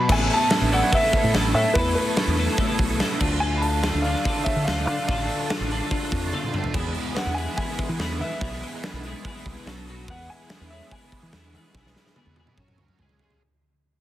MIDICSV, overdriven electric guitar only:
0, 0, Header, 1, 2, 480
1, 0, Start_track
1, 0, Key_signature, 3, "major"
1, 0, Tempo, 416378
1, 106, Time_signature, 4, 2, 24, 8
1, 16144, End_track
2, 0, Start_track
2, 0, Title_t, "Overdriven electric guitar"
2, 0, Program_c, 0, 29
2, 100, Note_on_c, 0, 57, 110
2, 106, Note_on_c, 0, 59, 96
2, 108, Note_on_c, 0, 64, 105
2, 115, Note_on_c, 0, 69, 104
2, 582, Note_off_c, 0, 57, 0
2, 587, Note_off_c, 0, 59, 0
2, 587, Note_on_c, 0, 57, 83
2, 588, Note_off_c, 0, 64, 0
2, 591, Note_on_c, 0, 59, 91
2, 592, Note_off_c, 0, 69, 0
2, 593, Note_on_c, 0, 64, 86
2, 597, Note_on_c, 0, 69, 99
2, 822, Note_off_c, 0, 59, 0
2, 823, Note_off_c, 0, 57, 0
2, 826, Note_off_c, 0, 64, 0
2, 828, Note_on_c, 0, 57, 87
2, 835, Note_off_c, 0, 69, 0
2, 835, Note_on_c, 0, 59, 84
2, 839, Note_on_c, 0, 64, 99
2, 839, Note_on_c, 0, 69, 88
2, 1054, Note_off_c, 0, 59, 0
2, 1060, Note_off_c, 0, 57, 0
2, 1061, Note_off_c, 0, 64, 0
2, 1065, Note_on_c, 0, 57, 85
2, 1068, Note_on_c, 0, 59, 99
2, 1071, Note_off_c, 0, 69, 0
2, 1074, Note_on_c, 0, 64, 112
2, 1075, Note_on_c, 0, 69, 111
2, 1528, Note_off_c, 0, 59, 0
2, 1535, Note_off_c, 0, 57, 0
2, 1535, Note_off_c, 0, 64, 0
2, 1539, Note_on_c, 0, 57, 97
2, 1542, Note_on_c, 0, 59, 93
2, 1548, Note_off_c, 0, 69, 0
2, 1549, Note_on_c, 0, 64, 89
2, 1553, Note_on_c, 0, 69, 104
2, 1783, Note_off_c, 0, 59, 0
2, 1787, Note_off_c, 0, 57, 0
2, 1791, Note_off_c, 0, 64, 0
2, 1792, Note_on_c, 0, 57, 82
2, 1797, Note_on_c, 0, 59, 70
2, 1803, Note_off_c, 0, 69, 0
2, 1804, Note_on_c, 0, 64, 95
2, 1808, Note_on_c, 0, 69, 90
2, 2007, Note_off_c, 0, 59, 0
2, 2014, Note_off_c, 0, 64, 0
2, 2021, Note_off_c, 0, 57, 0
2, 2021, Note_on_c, 0, 59, 111
2, 2025, Note_on_c, 0, 57, 101
2, 2026, Note_off_c, 0, 69, 0
2, 2028, Note_on_c, 0, 64, 103
2, 2031, Note_on_c, 0, 69, 119
2, 2498, Note_off_c, 0, 57, 0
2, 2500, Note_off_c, 0, 59, 0
2, 2503, Note_on_c, 0, 57, 96
2, 2504, Note_off_c, 0, 64, 0
2, 2511, Note_off_c, 0, 69, 0
2, 2514, Note_on_c, 0, 59, 94
2, 2515, Note_on_c, 0, 69, 99
2, 2518, Note_on_c, 0, 64, 96
2, 2734, Note_off_c, 0, 59, 0
2, 2738, Note_off_c, 0, 64, 0
2, 2741, Note_off_c, 0, 57, 0
2, 2746, Note_on_c, 0, 57, 83
2, 2748, Note_on_c, 0, 59, 82
2, 2752, Note_off_c, 0, 69, 0
2, 2752, Note_on_c, 0, 64, 96
2, 2757, Note_on_c, 0, 69, 97
2, 2972, Note_off_c, 0, 57, 0
2, 2972, Note_off_c, 0, 59, 0
2, 2975, Note_off_c, 0, 64, 0
2, 2977, Note_on_c, 0, 57, 94
2, 2985, Note_on_c, 0, 59, 109
2, 2986, Note_off_c, 0, 69, 0
2, 2989, Note_on_c, 0, 64, 112
2, 2991, Note_on_c, 0, 69, 116
2, 3449, Note_off_c, 0, 59, 0
2, 3450, Note_off_c, 0, 64, 0
2, 3454, Note_off_c, 0, 57, 0
2, 3459, Note_on_c, 0, 57, 86
2, 3463, Note_on_c, 0, 59, 99
2, 3464, Note_on_c, 0, 64, 97
2, 3465, Note_off_c, 0, 69, 0
2, 3469, Note_on_c, 0, 69, 85
2, 3680, Note_off_c, 0, 57, 0
2, 3684, Note_off_c, 0, 59, 0
2, 3685, Note_on_c, 0, 50, 96
2, 3689, Note_on_c, 0, 57, 91
2, 3690, Note_off_c, 0, 69, 0
2, 3691, Note_off_c, 0, 64, 0
2, 3695, Note_on_c, 0, 65, 90
2, 3696, Note_on_c, 0, 62, 113
2, 3926, Note_off_c, 0, 50, 0
2, 3931, Note_on_c, 0, 50, 101
2, 3934, Note_off_c, 0, 57, 0
2, 3935, Note_off_c, 0, 62, 0
2, 3938, Note_off_c, 0, 65, 0
2, 3938, Note_on_c, 0, 57, 103
2, 3939, Note_on_c, 0, 62, 114
2, 3943, Note_on_c, 0, 65, 110
2, 4397, Note_off_c, 0, 50, 0
2, 4402, Note_on_c, 0, 50, 97
2, 4403, Note_off_c, 0, 57, 0
2, 4408, Note_on_c, 0, 57, 90
2, 4409, Note_off_c, 0, 62, 0
2, 4412, Note_off_c, 0, 65, 0
2, 4413, Note_on_c, 0, 62, 92
2, 4417, Note_on_c, 0, 65, 93
2, 4637, Note_off_c, 0, 50, 0
2, 4641, Note_off_c, 0, 62, 0
2, 4642, Note_off_c, 0, 57, 0
2, 4642, Note_on_c, 0, 50, 99
2, 4646, Note_off_c, 0, 65, 0
2, 4646, Note_on_c, 0, 57, 91
2, 4646, Note_on_c, 0, 62, 88
2, 4651, Note_on_c, 0, 65, 94
2, 4873, Note_off_c, 0, 50, 0
2, 4879, Note_off_c, 0, 57, 0
2, 4884, Note_off_c, 0, 62, 0
2, 4887, Note_off_c, 0, 65, 0
2, 4887, Note_on_c, 0, 50, 99
2, 4893, Note_on_c, 0, 57, 95
2, 4898, Note_on_c, 0, 62, 114
2, 4901, Note_on_c, 0, 65, 110
2, 5367, Note_off_c, 0, 50, 0
2, 5368, Note_off_c, 0, 57, 0
2, 5377, Note_off_c, 0, 62, 0
2, 5380, Note_off_c, 0, 65, 0
2, 5381, Note_on_c, 0, 50, 87
2, 5382, Note_on_c, 0, 57, 91
2, 5391, Note_on_c, 0, 62, 80
2, 5394, Note_on_c, 0, 65, 94
2, 5598, Note_off_c, 0, 50, 0
2, 5602, Note_off_c, 0, 57, 0
2, 5604, Note_off_c, 0, 62, 0
2, 5605, Note_off_c, 0, 65, 0
2, 5611, Note_on_c, 0, 50, 87
2, 5615, Note_on_c, 0, 57, 82
2, 5618, Note_on_c, 0, 62, 72
2, 5619, Note_on_c, 0, 65, 84
2, 5842, Note_off_c, 0, 50, 0
2, 5847, Note_off_c, 0, 57, 0
2, 5853, Note_off_c, 0, 62, 0
2, 5855, Note_off_c, 0, 65, 0
2, 5856, Note_on_c, 0, 50, 104
2, 5861, Note_on_c, 0, 57, 97
2, 5866, Note_on_c, 0, 62, 117
2, 5869, Note_on_c, 0, 65, 115
2, 6331, Note_off_c, 0, 50, 0
2, 6341, Note_off_c, 0, 57, 0
2, 6344, Note_off_c, 0, 65, 0
2, 6345, Note_on_c, 0, 50, 88
2, 6347, Note_off_c, 0, 62, 0
2, 6355, Note_on_c, 0, 57, 87
2, 6358, Note_on_c, 0, 65, 89
2, 6361, Note_on_c, 0, 62, 91
2, 6565, Note_off_c, 0, 50, 0
2, 6569, Note_off_c, 0, 57, 0
2, 6575, Note_off_c, 0, 62, 0
2, 6576, Note_off_c, 0, 65, 0
2, 6579, Note_on_c, 0, 50, 83
2, 6583, Note_on_c, 0, 57, 88
2, 6589, Note_on_c, 0, 62, 99
2, 6589, Note_on_c, 0, 65, 96
2, 6803, Note_off_c, 0, 50, 0
2, 6805, Note_off_c, 0, 62, 0
2, 6806, Note_off_c, 0, 57, 0
2, 6812, Note_off_c, 0, 65, 0
2, 6817, Note_on_c, 0, 50, 91
2, 6818, Note_on_c, 0, 62, 110
2, 6819, Note_on_c, 0, 57, 91
2, 6826, Note_on_c, 0, 65, 98
2, 7283, Note_off_c, 0, 50, 0
2, 7289, Note_off_c, 0, 62, 0
2, 7291, Note_off_c, 0, 57, 0
2, 7296, Note_off_c, 0, 65, 0
2, 7297, Note_on_c, 0, 50, 86
2, 7303, Note_on_c, 0, 62, 88
2, 7305, Note_on_c, 0, 57, 98
2, 7310, Note_on_c, 0, 65, 103
2, 7517, Note_off_c, 0, 50, 0
2, 7527, Note_off_c, 0, 57, 0
2, 7531, Note_on_c, 0, 50, 80
2, 7535, Note_off_c, 0, 62, 0
2, 7537, Note_off_c, 0, 65, 0
2, 7541, Note_on_c, 0, 57, 89
2, 7549, Note_on_c, 0, 62, 78
2, 7551, Note_on_c, 0, 65, 97
2, 7763, Note_off_c, 0, 50, 0
2, 7768, Note_off_c, 0, 57, 0
2, 7772, Note_off_c, 0, 62, 0
2, 7773, Note_off_c, 0, 65, 0
2, 7776, Note_on_c, 0, 52, 97
2, 7785, Note_on_c, 0, 59, 122
2, 7786, Note_on_c, 0, 56, 104
2, 7786, Note_on_c, 0, 64, 113
2, 8237, Note_off_c, 0, 52, 0
2, 8243, Note_off_c, 0, 56, 0
2, 8246, Note_off_c, 0, 64, 0
2, 8251, Note_on_c, 0, 52, 100
2, 8253, Note_off_c, 0, 59, 0
2, 8257, Note_on_c, 0, 56, 90
2, 8258, Note_on_c, 0, 59, 93
2, 8260, Note_on_c, 0, 64, 105
2, 8483, Note_off_c, 0, 52, 0
2, 8494, Note_off_c, 0, 56, 0
2, 8496, Note_on_c, 0, 52, 94
2, 8498, Note_off_c, 0, 64, 0
2, 8501, Note_off_c, 0, 59, 0
2, 8506, Note_on_c, 0, 59, 95
2, 8508, Note_on_c, 0, 56, 95
2, 8512, Note_on_c, 0, 64, 93
2, 8726, Note_off_c, 0, 52, 0
2, 8735, Note_off_c, 0, 56, 0
2, 8740, Note_off_c, 0, 64, 0
2, 8740, Note_on_c, 0, 52, 92
2, 8748, Note_off_c, 0, 59, 0
2, 8749, Note_on_c, 0, 56, 90
2, 8753, Note_on_c, 0, 59, 114
2, 8754, Note_on_c, 0, 64, 96
2, 9198, Note_off_c, 0, 52, 0
2, 9204, Note_off_c, 0, 56, 0
2, 9211, Note_on_c, 0, 52, 85
2, 9216, Note_off_c, 0, 64, 0
2, 9218, Note_on_c, 0, 56, 91
2, 9224, Note_off_c, 0, 59, 0
2, 9228, Note_on_c, 0, 59, 91
2, 9230, Note_on_c, 0, 64, 102
2, 9443, Note_off_c, 0, 52, 0
2, 9443, Note_off_c, 0, 56, 0
2, 9452, Note_off_c, 0, 64, 0
2, 9457, Note_on_c, 0, 52, 77
2, 9457, Note_on_c, 0, 56, 81
2, 9462, Note_off_c, 0, 59, 0
2, 9466, Note_on_c, 0, 59, 91
2, 9466, Note_on_c, 0, 64, 98
2, 9672, Note_off_c, 0, 52, 0
2, 9674, Note_off_c, 0, 56, 0
2, 9681, Note_off_c, 0, 64, 0
2, 9686, Note_on_c, 0, 52, 101
2, 9688, Note_on_c, 0, 56, 110
2, 9690, Note_off_c, 0, 59, 0
2, 9695, Note_on_c, 0, 59, 105
2, 9695, Note_on_c, 0, 64, 117
2, 10167, Note_off_c, 0, 56, 0
2, 10168, Note_off_c, 0, 52, 0
2, 10177, Note_off_c, 0, 59, 0
2, 10178, Note_off_c, 0, 64, 0
2, 10181, Note_on_c, 0, 56, 86
2, 10181, Note_on_c, 0, 59, 107
2, 10182, Note_on_c, 0, 52, 91
2, 10192, Note_on_c, 0, 64, 96
2, 10416, Note_off_c, 0, 52, 0
2, 10421, Note_off_c, 0, 56, 0
2, 10429, Note_off_c, 0, 64, 0
2, 10430, Note_on_c, 0, 52, 93
2, 10434, Note_off_c, 0, 59, 0
2, 10435, Note_on_c, 0, 56, 101
2, 10438, Note_on_c, 0, 59, 101
2, 10443, Note_on_c, 0, 64, 99
2, 10660, Note_off_c, 0, 52, 0
2, 10664, Note_off_c, 0, 56, 0
2, 10671, Note_off_c, 0, 64, 0
2, 10674, Note_on_c, 0, 52, 99
2, 10676, Note_off_c, 0, 59, 0
2, 10678, Note_on_c, 0, 56, 96
2, 10681, Note_on_c, 0, 59, 97
2, 10685, Note_on_c, 0, 64, 109
2, 11135, Note_off_c, 0, 52, 0
2, 11137, Note_off_c, 0, 56, 0
2, 11140, Note_off_c, 0, 64, 0
2, 11152, Note_off_c, 0, 59, 0
2, 11152, Note_on_c, 0, 47, 106
2, 11156, Note_on_c, 0, 54, 96
2, 11156, Note_on_c, 0, 59, 117
2, 11157, Note_on_c, 0, 66, 116
2, 11372, Note_off_c, 0, 47, 0
2, 11377, Note_off_c, 0, 54, 0
2, 11378, Note_off_c, 0, 66, 0
2, 11386, Note_on_c, 0, 47, 90
2, 11388, Note_off_c, 0, 59, 0
2, 11391, Note_on_c, 0, 54, 79
2, 11392, Note_on_c, 0, 66, 89
2, 11393, Note_on_c, 0, 59, 95
2, 11611, Note_off_c, 0, 47, 0
2, 11613, Note_off_c, 0, 54, 0
2, 11614, Note_off_c, 0, 66, 0
2, 11619, Note_on_c, 0, 52, 111
2, 11620, Note_on_c, 0, 56, 105
2, 11624, Note_off_c, 0, 59, 0
2, 11628, Note_on_c, 0, 64, 123
2, 11629, Note_on_c, 0, 59, 117
2, 12092, Note_off_c, 0, 52, 0
2, 12093, Note_off_c, 0, 56, 0
2, 12102, Note_off_c, 0, 59, 0
2, 12103, Note_off_c, 0, 64, 0
2, 12106, Note_on_c, 0, 52, 92
2, 12107, Note_on_c, 0, 56, 90
2, 12115, Note_on_c, 0, 59, 87
2, 12117, Note_on_c, 0, 64, 95
2, 12328, Note_off_c, 0, 56, 0
2, 12329, Note_off_c, 0, 52, 0
2, 12329, Note_off_c, 0, 59, 0
2, 12339, Note_off_c, 0, 64, 0
2, 12342, Note_on_c, 0, 56, 107
2, 12343, Note_on_c, 0, 52, 87
2, 12343, Note_on_c, 0, 59, 101
2, 12353, Note_on_c, 0, 64, 86
2, 12570, Note_off_c, 0, 52, 0
2, 12574, Note_off_c, 0, 56, 0
2, 12577, Note_off_c, 0, 59, 0
2, 12580, Note_off_c, 0, 64, 0
2, 12584, Note_on_c, 0, 52, 104
2, 12588, Note_on_c, 0, 56, 105
2, 12591, Note_on_c, 0, 59, 105
2, 12594, Note_on_c, 0, 64, 111
2, 13041, Note_off_c, 0, 52, 0
2, 13050, Note_off_c, 0, 56, 0
2, 13052, Note_off_c, 0, 59, 0
2, 13055, Note_on_c, 0, 52, 91
2, 13056, Note_off_c, 0, 64, 0
2, 13064, Note_on_c, 0, 56, 86
2, 13066, Note_on_c, 0, 59, 92
2, 13070, Note_on_c, 0, 64, 99
2, 13292, Note_off_c, 0, 52, 0
2, 13295, Note_off_c, 0, 56, 0
2, 13299, Note_off_c, 0, 59, 0
2, 13303, Note_off_c, 0, 64, 0
2, 13306, Note_on_c, 0, 52, 80
2, 13308, Note_on_c, 0, 56, 88
2, 13313, Note_on_c, 0, 59, 80
2, 13317, Note_on_c, 0, 64, 75
2, 13522, Note_off_c, 0, 56, 0
2, 13523, Note_off_c, 0, 52, 0
2, 13530, Note_off_c, 0, 64, 0
2, 13531, Note_off_c, 0, 59, 0
2, 13536, Note_on_c, 0, 56, 100
2, 13537, Note_on_c, 0, 52, 112
2, 13544, Note_on_c, 0, 59, 115
2, 13544, Note_on_c, 0, 64, 112
2, 14004, Note_off_c, 0, 52, 0
2, 14005, Note_off_c, 0, 56, 0
2, 14012, Note_off_c, 0, 59, 0
2, 14015, Note_off_c, 0, 64, 0
2, 14018, Note_on_c, 0, 52, 80
2, 14018, Note_on_c, 0, 56, 81
2, 14026, Note_on_c, 0, 59, 104
2, 14029, Note_on_c, 0, 64, 90
2, 14230, Note_off_c, 0, 52, 0
2, 14238, Note_off_c, 0, 56, 0
2, 14243, Note_off_c, 0, 59, 0
2, 14244, Note_on_c, 0, 52, 87
2, 14245, Note_off_c, 0, 64, 0
2, 14252, Note_on_c, 0, 56, 86
2, 14257, Note_on_c, 0, 59, 89
2, 14258, Note_on_c, 0, 64, 92
2, 14481, Note_off_c, 0, 52, 0
2, 14485, Note_off_c, 0, 56, 0
2, 14487, Note_off_c, 0, 59, 0
2, 14487, Note_on_c, 0, 54, 95
2, 14488, Note_off_c, 0, 64, 0
2, 14496, Note_on_c, 0, 61, 99
2, 14496, Note_on_c, 0, 66, 105
2, 14500, Note_on_c, 0, 73, 100
2, 14963, Note_off_c, 0, 54, 0
2, 14967, Note_off_c, 0, 61, 0
2, 14967, Note_off_c, 0, 66, 0
2, 14969, Note_off_c, 0, 73, 0
2, 14974, Note_on_c, 0, 49, 91
2, 14979, Note_on_c, 0, 61, 105
2, 14984, Note_on_c, 0, 56, 106
2, 14984, Note_on_c, 0, 68, 106
2, 15200, Note_off_c, 0, 49, 0
2, 15200, Note_off_c, 0, 56, 0
2, 15205, Note_off_c, 0, 61, 0
2, 15211, Note_off_c, 0, 68, 0
2, 15214, Note_on_c, 0, 49, 83
2, 15214, Note_on_c, 0, 56, 77
2, 15219, Note_on_c, 0, 61, 80
2, 15225, Note_on_c, 0, 68, 89
2, 15446, Note_off_c, 0, 49, 0
2, 15446, Note_off_c, 0, 56, 0
2, 15449, Note_off_c, 0, 61, 0
2, 15452, Note_off_c, 0, 68, 0
2, 16144, End_track
0, 0, End_of_file